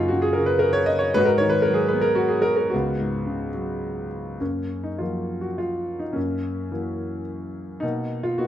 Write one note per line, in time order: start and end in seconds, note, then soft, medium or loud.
0.00 0.10 F#2 medium
0.00 0.36 C#3 soft
0.00 0.35 A#3 medium
0.00 0.36 C#4 medium
0.00 1.17 D#4 medium
0.00 0.11 F4 medium
0.00 0.08 F#4 medium
0.08 1.13 F#2 soft
0.08 0.24 F#4 medium
0.22 0.37 G#4 medium
0.33 0.49 A#4 medium
0.38 1.13 C#3 medium
0.46 0.62 B4 medium
0.59 0.74 A#4 medium
0.73 0.89 C#5 loud
0.86 1.00 D#5 loud
0.99 1.14 C#5 medium
1.14 2.69 G#2 medium
1.14 1.90 D#4 medium
1.14 1.90 F#4 medium
1.14 1.29 B4 loud
1.26 1.41 A#4 medium
1.38 2.43 D#3 medium
1.38 1.53 C#5 medium
1.50 1.64 B4 loud
1.62 1.77 A#4 medium
1.67 2.70 F#3 soft
1.74 1.91 G#4 medium
1.88 2.03 B4 medium
1.93 2.71 B3 soft
2.01 2.18 A#4 medium
2.15 2.32 F#4 medium
2.29 2.45 G#4 medium
2.42 2.55 A#4 medium
2.56 2.72 A#4 medium
2.70 3.49 B3 soft
2.70 3.48 F#4 medium
2.74 4.36 C#2 medium
3.00 4.07 G#2 soft
3.26 4.37 C#3 soft
3.54 4.38 F#3 soft
4.40 6.12 F#2 soft
4.40 5.00 A#3 soft
4.40 4.87 C#4 soft
4.84 5.00 D#4 soft
4.98 6.13 F3 soft
4.98 6.13 F#3 soft
4.98 6.13 A#3 soft
4.98 5.45 F4 soft
5.41 5.58 F#4 soft
5.58 6.03 F4 medium
5.99 6.15 D#4 medium
6.13 7.79 F#2 soft
6.13 6.70 A#3 soft
6.13 7.22 C#4 medium
6.72 7.79 E3 soft
6.72 7.79 F#3 soft
6.72 7.79 A#3 soft
7.80 8.47 B2 soft
7.80 8.36 A#3 soft
7.80 8.25 D#4 medium
8.23 8.39 F4 medium
8.38 8.47 A#3 soft
8.38 8.47 B3 soft
8.38 8.47 D#4 soft
8.38 8.47 F#4 medium